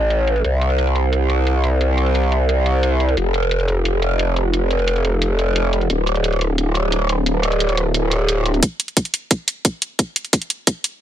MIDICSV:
0, 0, Header, 1, 3, 480
1, 0, Start_track
1, 0, Key_signature, 0, "minor"
1, 0, Tempo, 340909
1, 627, Time_signature, 4, 2, 24, 8
1, 15506, End_track
2, 0, Start_track
2, 0, Title_t, "Wobble bass"
2, 0, Program_c, 0, 39
2, 0, Note_on_c, 0, 33, 88
2, 602, Note_off_c, 0, 33, 0
2, 626, Note_on_c, 0, 36, 84
2, 4442, Note_off_c, 0, 36, 0
2, 4466, Note_on_c, 0, 29, 87
2, 8282, Note_off_c, 0, 29, 0
2, 8306, Note_on_c, 0, 26, 88
2, 12122, Note_off_c, 0, 26, 0
2, 15506, End_track
3, 0, Start_track
3, 0, Title_t, "Drums"
3, 147, Note_on_c, 9, 42, 91
3, 287, Note_off_c, 9, 42, 0
3, 387, Note_on_c, 9, 42, 68
3, 507, Note_off_c, 9, 42, 0
3, 507, Note_on_c, 9, 42, 39
3, 627, Note_off_c, 9, 42, 0
3, 627, Note_on_c, 9, 42, 90
3, 768, Note_off_c, 9, 42, 0
3, 866, Note_on_c, 9, 42, 66
3, 986, Note_off_c, 9, 42, 0
3, 986, Note_on_c, 9, 42, 35
3, 1106, Note_off_c, 9, 42, 0
3, 1106, Note_on_c, 9, 42, 90
3, 1227, Note_off_c, 9, 42, 0
3, 1227, Note_on_c, 9, 42, 37
3, 1346, Note_off_c, 9, 42, 0
3, 1346, Note_on_c, 9, 42, 63
3, 1487, Note_off_c, 9, 42, 0
3, 1586, Note_on_c, 9, 42, 92
3, 1727, Note_off_c, 9, 42, 0
3, 1826, Note_on_c, 9, 42, 66
3, 1967, Note_off_c, 9, 42, 0
3, 2066, Note_on_c, 9, 42, 89
3, 2207, Note_off_c, 9, 42, 0
3, 2306, Note_on_c, 9, 42, 65
3, 2447, Note_off_c, 9, 42, 0
3, 2546, Note_on_c, 9, 42, 88
3, 2687, Note_off_c, 9, 42, 0
3, 2786, Note_on_c, 9, 42, 63
3, 2906, Note_off_c, 9, 42, 0
3, 2906, Note_on_c, 9, 42, 33
3, 3026, Note_off_c, 9, 42, 0
3, 3026, Note_on_c, 9, 42, 87
3, 3146, Note_off_c, 9, 42, 0
3, 3146, Note_on_c, 9, 42, 35
3, 3266, Note_off_c, 9, 42, 0
3, 3266, Note_on_c, 9, 42, 61
3, 3407, Note_off_c, 9, 42, 0
3, 3506, Note_on_c, 9, 42, 88
3, 3647, Note_off_c, 9, 42, 0
3, 3746, Note_on_c, 9, 42, 62
3, 3886, Note_off_c, 9, 42, 0
3, 3986, Note_on_c, 9, 42, 87
3, 4126, Note_off_c, 9, 42, 0
3, 4226, Note_on_c, 9, 42, 60
3, 4346, Note_off_c, 9, 42, 0
3, 4346, Note_on_c, 9, 42, 36
3, 4466, Note_off_c, 9, 42, 0
3, 4466, Note_on_c, 9, 42, 85
3, 4607, Note_off_c, 9, 42, 0
3, 4706, Note_on_c, 9, 42, 61
3, 4826, Note_off_c, 9, 42, 0
3, 4826, Note_on_c, 9, 42, 33
3, 4945, Note_off_c, 9, 42, 0
3, 4945, Note_on_c, 9, 42, 81
3, 5065, Note_off_c, 9, 42, 0
3, 5065, Note_on_c, 9, 42, 33
3, 5185, Note_off_c, 9, 42, 0
3, 5185, Note_on_c, 9, 42, 59
3, 5326, Note_off_c, 9, 42, 0
3, 5425, Note_on_c, 9, 42, 83
3, 5566, Note_off_c, 9, 42, 0
3, 5666, Note_on_c, 9, 42, 60
3, 5806, Note_off_c, 9, 42, 0
3, 5905, Note_on_c, 9, 42, 83
3, 6046, Note_off_c, 9, 42, 0
3, 6145, Note_on_c, 9, 42, 63
3, 6286, Note_off_c, 9, 42, 0
3, 6386, Note_on_c, 9, 42, 86
3, 6526, Note_off_c, 9, 42, 0
3, 6626, Note_on_c, 9, 42, 61
3, 6746, Note_off_c, 9, 42, 0
3, 6746, Note_on_c, 9, 42, 33
3, 6866, Note_off_c, 9, 42, 0
3, 6866, Note_on_c, 9, 42, 84
3, 6986, Note_off_c, 9, 42, 0
3, 6986, Note_on_c, 9, 42, 33
3, 7106, Note_off_c, 9, 42, 0
3, 7106, Note_on_c, 9, 42, 59
3, 7246, Note_off_c, 9, 42, 0
3, 7346, Note_on_c, 9, 42, 82
3, 7487, Note_off_c, 9, 42, 0
3, 7586, Note_on_c, 9, 42, 62
3, 7727, Note_off_c, 9, 42, 0
3, 7826, Note_on_c, 9, 42, 84
3, 7967, Note_off_c, 9, 42, 0
3, 8066, Note_on_c, 9, 42, 61
3, 8186, Note_off_c, 9, 42, 0
3, 8186, Note_on_c, 9, 42, 34
3, 8306, Note_off_c, 9, 42, 0
3, 8306, Note_on_c, 9, 42, 86
3, 8447, Note_off_c, 9, 42, 0
3, 8546, Note_on_c, 9, 42, 64
3, 8666, Note_off_c, 9, 42, 0
3, 8666, Note_on_c, 9, 42, 33
3, 8787, Note_off_c, 9, 42, 0
3, 8787, Note_on_c, 9, 42, 84
3, 8907, Note_off_c, 9, 42, 0
3, 8907, Note_on_c, 9, 42, 34
3, 9027, Note_off_c, 9, 42, 0
3, 9027, Note_on_c, 9, 42, 59
3, 9168, Note_off_c, 9, 42, 0
3, 9267, Note_on_c, 9, 42, 87
3, 9407, Note_off_c, 9, 42, 0
3, 9506, Note_on_c, 9, 42, 61
3, 9647, Note_off_c, 9, 42, 0
3, 9746, Note_on_c, 9, 42, 88
3, 9887, Note_off_c, 9, 42, 0
3, 9986, Note_on_c, 9, 42, 63
3, 10127, Note_off_c, 9, 42, 0
3, 10226, Note_on_c, 9, 42, 89
3, 10367, Note_off_c, 9, 42, 0
3, 10466, Note_on_c, 9, 42, 66
3, 10586, Note_off_c, 9, 42, 0
3, 10586, Note_on_c, 9, 42, 34
3, 10706, Note_off_c, 9, 42, 0
3, 10706, Note_on_c, 9, 42, 92
3, 10826, Note_off_c, 9, 42, 0
3, 10826, Note_on_c, 9, 42, 37
3, 10946, Note_off_c, 9, 42, 0
3, 10946, Note_on_c, 9, 42, 64
3, 11087, Note_off_c, 9, 42, 0
3, 11186, Note_on_c, 9, 42, 89
3, 11326, Note_off_c, 9, 42, 0
3, 11426, Note_on_c, 9, 42, 66
3, 11567, Note_off_c, 9, 42, 0
3, 11666, Note_on_c, 9, 42, 92
3, 11807, Note_off_c, 9, 42, 0
3, 11905, Note_on_c, 9, 42, 63
3, 12026, Note_off_c, 9, 42, 0
3, 12026, Note_on_c, 9, 42, 37
3, 12145, Note_off_c, 9, 42, 0
3, 12145, Note_on_c, 9, 42, 96
3, 12146, Note_on_c, 9, 36, 96
3, 12286, Note_off_c, 9, 36, 0
3, 12286, Note_off_c, 9, 42, 0
3, 12386, Note_on_c, 9, 42, 69
3, 12505, Note_off_c, 9, 42, 0
3, 12505, Note_on_c, 9, 42, 36
3, 12625, Note_off_c, 9, 42, 0
3, 12625, Note_on_c, 9, 42, 92
3, 12626, Note_on_c, 9, 36, 96
3, 12745, Note_off_c, 9, 42, 0
3, 12745, Note_on_c, 9, 42, 38
3, 12766, Note_off_c, 9, 36, 0
3, 12865, Note_off_c, 9, 42, 0
3, 12865, Note_on_c, 9, 42, 67
3, 13006, Note_off_c, 9, 42, 0
3, 13105, Note_on_c, 9, 42, 94
3, 13106, Note_on_c, 9, 36, 95
3, 13246, Note_off_c, 9, 36, 0
3, 13246, Note_off_c, 9, 42, 0
3, 13345, Note_on_c, 9, 42, 69
3, 13486, Note_off_c, 9, 42, 0
3, 13585, Note_on_c, 9, 42, 97
3, 13586, Note_on_c, 9, 36, 99
3, 13726, Note_off_c, 9, 36, 0
3, 13726, Note_off_c, 9, 42, 0
3, 13825, Note_on_c, 9, 42, 69
3, 13966, Note_off_c, 9, 42, 0
3, 14066, Note_on_c, 9, 36, 99
3, 14066, Note_on_c, 9, 42, 96
3, 14206, Note_off_c, 9, 36, 0
3, 14206, Note_off_c, 9, 42, 0
3, 14306, Note_on_c, 9, 42, 69
3, 14426, Note_off_c, 9, 42, 0
3, 14426, Note_on_c, 9, 42, 38
3, 14545, Note_off_c, 9, 42, 0
3, 14545, Note_on_c, 9, 42, 95
3, 14546, Note_on_c, 9, 36, 95
3, 14665, Note_off_c, 9, 42, 0
3, 14665, Note_on_c, 9, 42, 38
3, 14687, Note_off_c, 9, 36, 0
3, 14785, Note_off_c, 9, 42, 0
3, 14785, Note_on_c, 9, 42, 65
3, 14926, Note_off_c, 9, 42, 0
3, 15025, Note_on_c, 9, 42, 96
3, 15026, Note_on_c, 9, 36, 94
3, 15166, Note_off_c, 9, 42, 0
3, 15167, Note_off_c, 9, 36, 0
3, 15265, Note_on_c, 9, 42, 68
3, 15406, Note_off_c, 9, 42, 0
3, 15506, End_track
0, 0, End_of_file